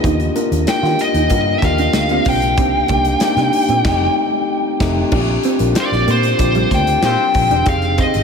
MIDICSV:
0, 0, Header, 1, 9, 480
1, 0, Start_track
1, 0, Key_signature, -2, "major"
1, 0, Tempo, 635661
1, 29, Time_signature, 4, 2, 24, 8
1, 6218, End_track
2, 0, Start_track
2, 0, Title_t, "Lead electric guitar"
2, 0, Program_c, 0, 29
2, 519, Note_on_c, 0, 79, 94
2, 761, Note_off_c, 0, 79, 0
2, 766, Note_on_c, 0, 75, 92
2, 1195, Note_on_c, 0, 76, 65
2, 1198, Note_off_c, 0, 75, 0
2, 1238, Note_off_c, 0, 76, 0
2, 1247, Note_on_c, 0, 77, 102
2, 1724, Note_off_c, 0, 77, 0
2, 1727, Note_on_c, 0, 79, 91
2, 3128, Note_off_c, 0, 79, 0
2, 4382, Note_on_c, 0, 74, 98
2, 4612, Note_off_c, 0, 74, 0
2, 4617, Note_on_c, 0, 72, 90
2, 5092, Note_on_c, 0, 79, 103
2, 5096, Note_off_c, 0, 72, 0
2, 5318, Note_off_c, 0, 79, 0
2, 5327, Note_on_c, 0, 79, 109
2, 5767, Note_off_c, 0, 79, 0
2, 5807, Note_on_c, 0, 77, 95
2, 6042, Note_on_c, 0, 75, 94
2, 6044, Note_off_c, 0, 77, 0
2, 6218, Note_off_c, 0, 75, 0
2, 6218, End_track
3, 0, Start_track
3, 0, Title_t, "Horn section"
3, 0, Program_c, 1, 61
3, 4349, Note_on_c, 1, 60, 76
3, 4349, Note_on_c, 1, 72, 82
3, 4351, Note_on_c, 1, 67, 76
3, 4352, Note_on_c, 1, 65, 77
3, 4451, Note_off_c, 1, 60, 0
3, 4451, Note_off_c, 1, 72, 0
3, 4452, Note_off_c, 1, 67, 0
3, 4453, Note_off_c, 1, 65, 0
3, 5312, Note_on_c, 1, 67, 101
3, 5314, Note_on_c, 1, 65, 96
3, 5317, Note_on_c, 1, 60, 104
3, 5317, Note_on_c, 1, 72, 113
3, 5464, Note_off_c, 1, 67, 0
3, 5465, Note_off_c, 1, 65, 0
3, 5467, Note_off_c, 1, 60, 0
3, 5467, Note_off_c, 1, 72, 0
3, 6218, End_track
4, 0, Start_track
4, 0, Title_t, "Tine electric piano"
4, 0, Program_c, 2, 4
4, 0, Control_c, 2, 64, 127
4, 22, Note_on_c, 2, 58, 88
4, 25, Note_on_c, 2, 65, 78
4, 26, Note_on_c, 2, 62, 79
4, 32, Note_on_c, 2, 67, 94
4, 37, Control_c, 2, 64, 0
4, 155, Control_c, 2, 64, 127
4, 212, Note_off_c, 2, 58, 0
4, 214, Note_off_c, 2, 62, 0
4, 214, Note_off_c, 2, 65, 0
4, 217, Note_off_c, 2, 67, 0
4, 263, Note_on_c, 2, 58, 83
4, 266, Note_on_c, 2, 62, 76
4, 267, Note_on_c, 2, 65, 81
4, 269, Note_on_c, 2, 70, 93
4, 453, Note_off_c, 2, 58, 0
4, 455, Note_off_c, 2, 62, 0
4, 455, Note_off_c, 2, 65, 0
4, 456, Note_off_c, 2, 70, 0
4, 500, Note_on_c, 2, 58, 70
4, 505, Note_on_c, 2, 62, 61
4, 508, Note_on_c, 2, 65, 59
4, 511, Note_on_c, 2, 67, 77
4, 878, Note_off_c, 2, 58, 0
4, 881, Note_off_c, 2, 62, 0
4, 883, Note_off_c, 2, 65, 0
4, 884, Note_off_c, 2, 67, 0
4, 983, Note_on_c, 2, 58, 73
4, 985, Note_on_c, 2, 62, 63
4, 991, Note_on_c, 2, 70, 79
4, 992, Note_on_c, 2, 65, 59
4, 1173, Note_off_c, 2, 58, 0
4, 1174, Note_off_c, 2, 62, 0
4, 1177, Note_off_c, 2, 70, 0
4, 1178, Note_off_c, 2, 65, 0
4, 1229, Note_on_c, 2, 58, 71
4, 1231, Note_on_c, 2, 62, 65
4, 1233, Note_on_c, 2, 65, 68
4, 1238, Note_on_c, 2, 67, 78
4, 1509, Note_off_c, 2, 58, 0
4, 1510, Note_off_c, 2, 62, 0
4, 1511, Note_off_c, 2, 65, 0
4, 1514, Note_off_c, 2, 67, 0
4, 1590, Note_on_c, 2, 58, 69
4, 1594, Note_on_c, 2, 62, 59
4, 1598, Note_on_c, 2, 65, 69
4, 1599, Note_on_c, 2, 67, 74
4, 1870, Note_off_c, 2, 58, 0
4, 1872, Note_off_c, 2, 62, 0
4, 1874, Note_off_c, 2, 65, 0
4, 1874, Note_off_c, 2, 67, 0
4, 1941, Note_on_c, 2, 58, 73
4, 1946, Note_on_c, 2, 62, 61
4, 1951, Note_on_c, 2, 63, 63
4, 1952, Note_on_c, 2, 67, 86
4, 1959, Control_c, 2, 64, 0
4, 2095, Control_c, 2, 64, 127
4, 2132, Note_off_c, 2, 58, 0
4, 2134, Note_off_c, 2, 62, 0
4, 2137, Note_off_c, 2, 63, 0
4, 2138, Note_off_c, 2, 67, 0
4, 2188, Note_on_c, 2, 58, 65
4, 2194, Note_on_c, 2, 62, 66
4, 2195, Note_on_c, 2, 63, 66
4, 2198, Note_on_c, 2, 67, 72
4, 2375, Note_off_c, 2, 58, 0
4, 2378, Note_off_c, 2, 62, 0
4, 2379, Note_off_c, 2, 63, 0
4, 2380, Note_off_c, 2, 67, 0
4, 2425, Note_on_c, 2, 58, 84
4, 2429, Note_on_c, 2, 62, 78
4, 2431, Note_on_c, 2, 63, 78
4, 2434, Note_on_c, 2, 67, 100
4, 2801, Note_off_c, 2, 58, 0
4, 2803, Note_off_c, 2, 62, 0
4, 2804, Note_off_c, 2, 63, 0
4, 2805, Note_off_c, 2, 67, 0
4, 2902, Note_on_c, 2, 57, 101
4, 2905, Note_on_c, 2, 60, 94
4, 2910, Note_on_c, 2, 63, 93
4, 2914, Note_on_c, 2, 67, 99
4, 2919, Control_c, 2, 64, 0
4, 3047, Control_c, 2, 64, 127
4, 3068, Note_off_c, 2, 57, 0
4, 3070, Note_off_c, 2, 60, 0
4, 3073, Note_off_c, 2, 63, 0
4, 3075, Note_off_c, 2, 67, 0
4, 3625, Note_on_c, 2, 57, 106
4, 3629, Note_on_c, 2, 60, 107
4, 3631, Note_on_c, 2, 63, 104
4, 3635, Note_on_c, 2, 67, 103
4, 3790, Note_off_c, 2, 57, 0
4, 3792, Note_off_c, 2, 60, 0
4, 3793, Note_off_c, 2, 63, 0
4, 3796, Note_off_c, 2, 67, 0
4, 3865, Note_on_c, 2, 60, 82
4, 3868, Note_on_c, 2, 62, 78
4, 3869, Note_on_c, 2, 65, 78
4, 3876, Note_on_c, 2, 67, 90
4, 3879, Control_c, 2, 64, 0
4, 3994, Control_c, 2, 64, 127
4, 4147, Note_off_c, 2, 60, 0
4, 4148, Note_off_c, 2, 62, 0
4, 4149, Note_off_c, 2, 65, 0
4, 4152, Note_off_c, 2, 67, 0
4, 4219, Note_on_c, 2, 60, 68
4, 4223, Note_on_c, 2, 62, 62
4, 4225, Note_on_c, 2, 65, 69
4, 4228, Note_on_c, 2, 70, 78
4, 4691, Note_off_c, 2, 60, 0
4, 4693, Note_off_c, 2, 62, 0
4, 4694, Note_off_c, 2, 65, 0
4, 4695, Note_off_c, 2, 70, 0
4, 4824, Note_on_c, 2, 60, 74
4, 4825, Note_on_c, 2, 62, 61
4, 4828, Note_on_c, 2, 65, 62
4, 4830, Note_on_c, 2, 67, 75
4, 5573, Note_off_c, 2, 60, 0
4, 5574, Note_off_c, 2, 62, 0
4, 5575, Note_off_c, 2, 65, 0
4, 5576, Note_off_c, 2, 67, 0
4, 5788, Note_on_c, 2, 60, 75
4, 5788, Note_on_c, 2, 63, 67
4, 5792, Note_on_c, 2, 67, 65
4, 5796, Note_on_c, 2, 68, 77
4, 5799, Control_c, 2, 64, 0
4, 5948, Control_c, 2, 64, 127
4, 6218, Note_off_c, 2, 60, 0
4, 6218, Note_off_c, 2, 63, 0
4, 6218, Note_off_c, 2, 67, 0
4, 6218, Note_off_c, 2, 68, 0
4, 6218, End_track
5, 0, Start_track
5, 0, Title_t, "Clean electric guitar"
5, 0, Program_c, 3, 27
5, 36, Note_on_c, 3, 63, 79
5, 127, Note_off_c, 3, 63, 0
5, 271, Note_on_c, 3, 62, 73
5, 364, Note_off_c, 3, 62, 0
5, 627, Note_on_c, 3, 65, 87
5, 722, Note_off_c, 3, 65, 0
5, 871, Note_on_c, 3, 63, 66
5, 964, Note_off_c, 3, 63, 0
5, 992, Note_on_c, 3, 65, 78
5, 1084, Note_off_c, 3, 65, 0
5, 1353, Note_on_c, 3, 62, 80
5, 1445, Note_off_c, 3, 62, 0
5, 1595, Note_on_c, 3, 60, 68
5, 1686, Note_off_c, 3, 60, 0
5, 1713, Note_on_c, 3, 60, 68
5, 1805, Note_off_c, 3, 60, 0
5, 1954, Note_on_c, 3, 60, 86
5, 2046, Note_off_c, 3, 60, 0
5, 2192, Note_on_c, 3, 58, 72
5, 2284, Note_off_c, 3, 58, 0
5, 2552, Note_on_c, 3, 62, 78
5, 2644, Note_off_c, 3, 62, 0
5, 2793, Note_on_c, 3, 60, 71
5, 2885, Note_off_c, 3, 60, 0
5, 3869, Note_on_c, 3, 62, 75
5, 3963, Note_off_c, 3, 62, 0
5, 4114, Note_on_c, 3, 60, 78
5, 4205, Note_off_c, 3, 60, 0
5, 4590, Note_on_c, 3, 58, 82
5, 4683, Note_off_c, 3, 58, 0
5, 4950, Note_on_c, 3, 55, 76
5, 5043, Note_off_c, 3, 55, 0
5, 5070, Note_on_c, 3, 58, 77
5, 5163, Note_off_c, 3, 58, 0
5, 5311, Note_on_c, 3, 60, 78
5, 5404, Note_off_c, 3, 60, 0
5, 5672, Note_on_c, 3, 62, 77
5, 5764, Note_off_c, 3, 62, 0
5, 5786, Note_on_c, 3, 62, 72
5, 5880, Note_off_c, 3, 62, 0
5, 6025, Note_on_c, 3, 60, 83
5, 6119, Note_off_c, 3, 60, 0
5, 6218, End_track
6, 0, Start_track
6, 0, Title_t, "Fingered electric bass"
6, 0, Program_c, 4, 33
6, 29, Note_on_c, 4, 39, 93
6, 216, Note_off_c, 4, 39, 0
6, 388, Note_on_c, 4, 39, 98
6, 482, Note_off_c, 4, 39, 0
6, 624, Note_on_c, 4, 51, 91
6, 719, Note_off_c, 4, 51, 0
6, 862, Note_on_c, 4, 39, 91
6, 958, Note_off_c, 4, 39, 0
6, 983, Note_on_c, 4, 43, 96
6, 1172, Note_off_c, 4, 43, 0
6, 1226, Note_on_c, 4, 39, 89
6, 1414, Note_off_c, 4, 39, 0
6, 1461, Note_on_c, 4, 38, 75
6, 1651, Note_off_c, 4, 38, 0
6, 1706, Note_on_c, 4, 35, 90
6, 1944, Note_off_c, 4, 35, 0
6, 1944, Note_on_c, 4, 36, 102
6, 2132, Note_off_c, 4, 36, 0
6, 2183, Note_on_c, 4, 36, 98
6, 2372, Note_off_c, 4, 36, 0
6, 2539, Note_on_c, 4, 48, 101
6, 2636, Note_off_c, 4, 48, 0
6, 2783, Note_on_c, 4, 46, 85
6, 2879, Note_off_c, 4, 46, 0
6, 2903, Note_on_c, 4, 29, 95
6, 3068, Note_off_c, 4, 29, 0
6, 3626, Note_on_c, 4, 29, 109
6, 3790, Note_off_c, 4, 29, 0
6, 3865, Note_on_c, 4, 34, 96
6, 4053, Note_off_c, 4, 34, 0
6, 4228, Note_on_c, 4, 34, 104
6, 4321, Note_off_c, 4, 34, 0
6, 4468, Note_on_c, 4, 34, 91
6, 4562, Note_off_c, 4, 34, 0
6, 4586, Note_on_c, 4, 46, 93
6, 4773, Note_off_c, 4, 46, 0
6, 4826, Note_on_c, 4, 34, 93
6, 5013, Note_off_c, 4, 34, 0
6, 5067, Note_on_c, 4, 38, 93
6, 5254, Note_off_c, 4, 38, 0
6, 5302, Note_on_c, 4, 46, 95
6, 5397, Note_off_c, 4, 46, 0
6, 5546, Note_on_c, 4, 34, 90
6, 5640, Note_off_c, 4, 34, 0
6, 5664, Note_on_c, 4, 28, 81
6, 5759, Note_off_c, 4, 28, 0
6, 5788, Note_on_c, 4, 29, 96
6, 6067, Note_off_c, 4, 29, 0
6, 6152, Note_on_c, 4, 32, 85
6, 6218, Note_off_c, 4, 32, 0
6, 6218, End_track
7, 0, Start_track
7, 0, Title_t, "Muted clean electric guitar strokes"
7, 149, Note_on_c, 9, 29, 42
7, 225, Note_off_c, 9, 29, 0
7, 753, Note_on_c, 9, 29, 46
7, 828, Note_off_c, 9, 29, 0
7, 1232, Note_on_c, 9, 29, 42
7, 1308, Note_off_c, 9, 29, 0
7, 1477, Note_on_c, 9, 29, 46
7, 1553, Note_off_c, 9, 29, 0
7, 2079, Note_on_c, 9, 29, 43
7, 2155, Note_off_c, 9, 29, 0
7, 2671, Note_on_c, 9, 29, 46
7, 2747, Note_off_c, 9, 29, 0
7, 4229, Note_on_c, 9, 29, 46
7, 4305, Note_off_c, 9, 29, 0
7, 4830, Note_on_c, 9, 29, 49
7, 4906, Note_off_c, 9, 29, 0
7, 5434, Note_on_c, 9, 29, 41
7, 5510, Note_off_c, 9, 29, 0
7, 6148, Note_on_c, 9, 29, 43
7, 6218, Note_off_c, 9, 29, 0
7, 6218, End_track
8, 0, Start_track
8, 0, Title_t, "Muted fingered electric bass strokes"
8, 509, Note_on_c, 9, 29, 44
8, 585, Note_off_c, 9, 29, 0
8, 2427, Note_on_c, 9, 29, 47
8, 2502, Note_off_c, 9, 29, 0
8, 6218, End_track
9, 0, Start_track
9, 0, Title_t, "Drums"
9, 30, Note_on_c, 9, 36, 97
9, 31, Note_on_c, 9, 42, 90
9, 105, Note_off_c, 9, 36, 0
9, 107, Note_off_c, 9, 42, 0
9, 150, Note_on_c, 9, 42, 37
9, 225, Note_off_c, 9, 42, 0
9, 270, Note_on_c, 9, 42, 67
9, 345, Note_off_c, 9, 42, 0
9, 393, Note_on_c, 9, 42, 54
9, 469, Note_off_c, 9, 42, 0
9, 507, Note_on_c, 9, 42, 101
9, 513, Note_on_c, 9, 38, 127
9, 582, Note_off_c, 9, 42, 0
9, 588, Note_off_c, 9, 38, 0
9, 637, Note_on_c, 9, 38, 34
9, 713, Note_off_c, 9, 38, 0
9, 749, Note_on_c, 9, 42, 68
9, 825, Note_off_c, 9, 42, 0
9, 864, Note_on_c, 9, 42, 49
9, 940, Note_off_c, 9, 42, 0
9, 979, Note_on_c, 9, 42, 97
9, 984, Note_on_c, 9, 36, 89
9, 1055, Note_off_c, 9, 42, 0
9, 1060, Note_off_c, 9, 36, 0
9, 1226, Note_on_c, 9, 36, 92
9, 1227, Note_on_c, 9, 38, 33
9, 1228, Note_on_c, 9, 42, 68
9, 1301, Note_off_c, 9, 36, 0
9, 1303, Note_off_c, 9, 38, 0
9, 1303, Note_off_c, 9, 42, 0
9, 1346, Note_on_c, 9, 42, 52
9, 1422, Note_off_c, 9, 42, 0
9, 1460, Note_on_c, 9, 42, 73
9, 1461, Note_on_c, 9, 38, 111
9, 1536, Note_off_c, 9, 38, 0
9, 1536, Note_off_c, 9, 42, 0
9, 1579, Note_on_c, 9, 42, 36
9, 1654, Note_off_c, 9, 42, 0
9, 1699, Note_on_c, 9, 46, 69
9, 1706, Note_on_c, 9, 36, 86
9, 1775, Note_off_c, 9, 46, 0
9, 1781, Note_off_c, 9, 36, 0
9, 1825, Note_on_c, 9, 42, 52
9, 1901, Note_off_c, 9, 42, 0
9, 1944, Note_on_c, 9, 42, 94
9, 1946, Note_on_c, 9, 36, 113
9, 2019, Note_off_c, 9, 42, 0
9, 2021, Note_off_c, 9, 36, 0
9, 2178, Note_on_c, 9, 42, 71
9, 2185, Note_on_c, 9, 36, 95
9, 2253, Note_off_c, 9, 42, 0
9, 2260, Note_off_c, 9, 36, 0
9, 2301, Note_on_c, 9, 42, 50
9, 2376, Note_off_c, 9, 42, 0
9, 2417, Note_on_c, 9, 42, 102
9, 2424, Note_on_c, 9, 38, 121
9, 2493, Note_off_c, 9, 42, 0
9, 2499, Note_off_c, 9, 38, 0
9, 2543, Note_on_c, 9, 42, 36
9, 2548, Note_on_c, 9, 38, 32
9, 2619, Note_off_c, 9, 42, 0
9, 2624, Note_off_c, 9, 38, 0
9, 2665, Note_on_c, 9, 46, 68
9, 2740, Note_off_c, 9, 46, 0
9, 2783, Note_on_c, 9, 42, 49
9, 2859, Note_off_c, 9, 42, 0
9, 2905, Note_on_c, 9, 36, 114
9, 2905, Note_on_c, 9, 49, 84
9, 2909, Note_on_c, 9, 38, 106
9, 2980, Note_off_c, 9, 49, 0
9, 2981, Note_off_c, 9, 36, 0
9, 2985, Note_off_c, 9, 38, 0
9, 3625, Note_on_c, 9, 49, 78
9, 3627, Note_on_c, 9, 36, 108
9, 3630, Note_on_c, 9, 38, 97
9, 3701, Note_off_c, 9, 49, 0
9, 3702, Note_off_c, 9, 36, 0
9, 3705, Note_off_c, 9, 38, 0
9, 3863, Note_on_c, 9, 49, 97
9, 3866, Note_on_c, 9, 36, 112
9, 3938, Note_off_c, 9, 49, 0
9, 3942, Note_off_c, 9, 36, 0
9, 4104, Note_on_c, 9, 42, 72
9, 4179, Note_off_c, 9, 42, 0
9, 4223, Note_on_c, 9, 42, 52
9, 4298, Note_off_c, 9, 42, 0
9, 4344, Note_on_c, 9, 42, 102
9, 4350, Note_on_c, 9, 38, 127
9, 4420, Note_off_c, 9, 42, 0
9, 4426, Note_off_c, 9, 38, 0
9, 4475, Note_on_c, 9, 38, 35
9, 4550, Note_off_c, 9, 38, 0
9, 4590, Note_on_c, 9, 42, 66
9, 4665, Note_off_c, 9, 42, 0
9, 4707, Note_on_c, 9, 42, 48
9, 4782, Note_off_c, 9, 42, 0
9, 4825, Note_on_c, 9, 42, 100
9, 4827, Note_on_c, 9, 36, 90
9, 4900, Note_off_c, 9, 42, 0
9, 4902, Note_off_c, 9, 36, 0
9, 4945, Note_on_c, 9, 42, 36
9, 5021, Note_off_c, 9, 42, 0
9, 5068, Note_on_c, 9, 36, 85
9, 5071, Note_on_c, 9, 42, 72
9, 5143, Note_off_c, 9, 36, 0
9, 5146, Note_off_c, 9, 42, 0
9, 5189, Note_on_c, 9, 42, 50
9, 5265, Note_off_c, 9, 42, 0
9, 5305, Note_on_c, 9, 42, 72
9, 5306, Note_on_c, 9, 38, 114
9, 5381, Note_off_c, 9, 38, 0
9, 5381, Note_off_c, 9, 42, 0
9, 5545, Note_on_c, 9, 46, 64
9, 5549, Note_on_c, 9, 36, 89
9, 5620, Note_off_c, 9, 46, 0
9, 5624, Note_off_c, 9, 36, 0
9, 5671, Note_on_c, 9, 42, 57
9, 5747, Note_off_c, 9, 42, 0
9, 5782, Note_on_c, 9, 42, 89
9, 5787, Note_on_c, 9, 36, 114
9, 5858, Note_off_c, 9, 42, 0
9, 5863, Note_off_c, 9, 36, 0
9, 5904, Note_on_c, 9, 42, 36
9, 5980, Note_off_c, 9, 42, 0
9, 6025, Note_on_c, 9, 42, 73
9, 6029, Note_on_c, 9, 36, 103
9, 6101, Note_off_c, 9, 42, 0
9, 6104, Note_off_c, 9, 36, 0
9, 6146, Note_on_c, 9, 42, 60
9, 6218, Note_off_c, 9, 42, 0
9, 6218, End_track
0, 0, End_of_file